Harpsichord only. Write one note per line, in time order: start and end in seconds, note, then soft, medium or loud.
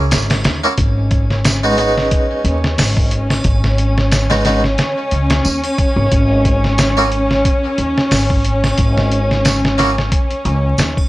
0.00 0.59 A#3 medium
0.00 0.59 C#4 medium
0.00 0.60 E4 medium
0.00 0.60 G#4 medium
0.64 0.71 A#3 medium
0.64 0.71 C#4 medium
0.64 0.72 E4 medium
0.64 0.72 F#4 medium
1.63 1.75 G#3 medium
1.63 1.75 B3 medium
1.63 1.75 D#4 medium
1.63 1.76 F#4 loud
1.77 4.25 G#3 medium
1.77 4.26 B3 medium
1.77 4.26 D#4 medium
1.77 4.27 F#4 medium
4.30 4.41 G#3 medium
4.30 4.42 B3 medium
4.30 4.42 D#4 medium
4.30 4.42 F#4 loud
4.45 4.60 G#3 medium
4.45 4.60 B3 medium
4.45 4.61 D#4 medium
4.45 4.61 F#4 loud
6.97 7.08 A#3 medium
6.97 7.08 C#4 medium
6.97 7.09 E4 medium
6.97 7.09 F#4 loud
9.78 9.93 A#3 medium
9.78 9.93 C#4 medium
9.78 9.94 E4 medium
9.78 9.94 F#4 medium